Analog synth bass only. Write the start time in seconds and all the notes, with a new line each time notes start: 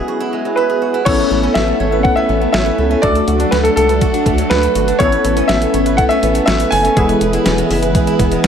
1.06 A1
1.31 A1
1.55 A1
1.80 G#1
2.29 A1
2.54 A1
2.78 C#2
3.03 D2
3.28 D2
3.52 D2
3.77 C#2
4.26 D2
4.51 D2
4.75 G#1
5.00 A1
5.25 A1
5.49 A1
5.74 G#1
6.23 A1
6.48 A1
6.72 F#1
6.97 E1
7.21 E1
7.46 E1
7.70 F#1
8.19 E1